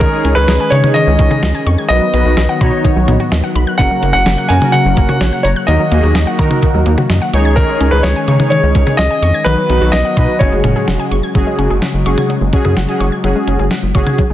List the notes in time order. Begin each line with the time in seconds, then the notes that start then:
Already playing: D#3 G#3 C#4 D#4 G#4 C#5
0.00 D#3 A#4, kick, closed hi-hat
0.13 G#3
0.25 C#2 C#4, closed hi-hat
0.35 C#2 G#4 B4
0.48 C#2 D#5, snare, closed hi-hat
0.60 G#5
0.70 C#3 D#4 G#4 C#5 C#6, closed hi-hat
0.84 D#4 G#4 C#5, mid tom
0.94 D#3 D#5, closed hi-hat
1.07 C#2 G#3
1.19 C#2 C#4, kick, closed hi-hat
1.31 G#4, mid tom
1.43 C#2 D#5, snare, closed hi-hat
1.55 G#5
1.66 F2 C#6, closed hi-hat
1.78 G#6
1.89 B1 D#3 F#3 B3 D#4 F#4 B4 D#5, closed hi-hat
2.02 F#3
2.14 B1 B3 D#4 F#4 B4, closed hi-hat
2.25 B1 F#4
2.37 B1 D#5, snare, closed hi-hat
2.49 F#5
2.61 B2 D#4 F#4 C#5 B5, kick, closed hi-hat
2.84 D#3, kick, closed hi-hat
2.96 B1 F#3
3.08 B1 B3, closed hi-hat, mid tom
3.20 F#4
3.32 D#2 D#5, snare, closed hi-hat
3.44 F#5
3.55 B1 B5, closed hi-hat
3.67 F#6
3.78 F#1 C#3 A#3 C#4 F#4 A#4 F#5, kick, closed hi-hat
3.91 F#3
4.03 F#1 A#3, closed hi-hat
4.13 F#1 F#4 F#5
4.26 F#1 C#5, snare, closed hi-hat
4.38 F#5
4.49 F#2 C#4 F#4 A#4 G#5 A#5, closed hi-hat
4.62 C#4 F#4 A#4, mid tom
4.72 C#3 F#5, closed hi-hat
4.85 F#1 F#3
4.97 F#1 A#3, kick, closed hi-hat
5.09 F#4, mid tom
5.21 A#1 C#5, snare, closed hi-hat
5.33 F#5
5.43 F#1 C#5 A#5, closed hi-hat
5.56 F#6
5.67 D#2 D#3 A#3 D#4 F#4 A#4 D#5, closed hi-hat
5.80 F#3
5.92 D#2 A#3 D#4 F#4 G#4, closed hi-hat
6.03 D#2 F#4
6.15 D#2 D#5, snare, closed hi-hat
6.27 F#5
6.39 D#3 D#4 F#4 A#4 A#5, kick, closed hi-hat
6.51 mid tom
6.63 D#3, kick, closed hi-hat
6.74 D#2 F#3
6.86 D#2 A#3, closed hi-hat
6.98 F#4, mid tom
7.10 F#2 D#5, snare, closed hi-hat
7.22 F#5
7.33 C#2 D#3 G#3 C#4 D#4 G#4 C#5 C#6, closed hi-hat
7.45 G#6
7.56 D#3 A#4, kick, closed hi-hat
7.69 G#3
7.81 C#2 C#4, closed hi-hat
7.91 C#2 G#4 B4
8.03 C#2 C#5 D#5, snare, closed hi-hat
8.16 G#5
8.28 C#3 D#4 G#4 C#5 C#6, closed hi-hat
8.40 D#4 G#4 C#5, mid tom
8.50 D#3 C#5, closed hi-hat
8.63 C#2 G#3
8.75 C#2 C#4, kick, closed hi-hat
8.87 G#4, mid tom
8.97 C#2 D#5, snare, closed hi-hat
9.11 G#5
9.22 F2 C#6, closed hi-hat
9.34 G#6
9.44 B1 D#3 F#3 B3 D#4 F#4 B4, closed hi-hat
9.58 F#3
9.70 B1 B3 D#4 F#4 B4, closed hi-hat
9.81 B1 F#4
9.92 B1 D#5, snare, closed hi-hat
10.05 F#5
10.17 B2 D#4 F#4 B4 B5, kick, closed hi-hat
10.39 F#1 C#3 F#3 G#3 C#4 F#4 G#4 C#5, kick, closed hi-hat
10.52 F#1 G#3
10.64 F#1 C#4, closed hi-hat, mid tom
10.76 G#4
10.88 F1 F#5, snare, closed hi-hat
10.99 G#5
11.11 F#1 C#6, closed hi-hat
11.23 G#6
11.35 F#1 C#3 F#3 G#3 C#4 F#4 G#4, kick, closed hi-hat
11.47 G#3
11.59 F#1 C#4, closed hi-hat
11.70 F#1 G#4
11.82 F#5, snare, closed hi-hat
11.94 F#1
12.06 F#1 C#4 F#4 G#4 C#6, closed hi-hat
12.18 G#6, mid tom
12.29 F#3, closed hi-hat
12.41 F#1 G#3
12.53 C#4 F#4 G#4, kick, closed hi-hat
12.65 F#2 G#4, mid tom
12.77 F#1 F#5, snare, closed hi-hat
12.88 C#4 F#4 G#4 G#5
13.00 F#1 C#6, closed hi-hat
13.12 G#6
13.24 F#1 F#3 C#4 F#4 G#4, closed hi-hat
13.36 G#3
13.47 F#1 C#4, closed hi-hat
13.59 F#1 G#4
13.71 F#5, snare, closed hi-hat
13.83 F#1
13.95 F#1 C#4 F#4 G#4 C#6, kick, closed hi-hat
14.07 G#6, mid tom
14.18 F#3, kick, closed hi-hat
14.30 F#1 G#3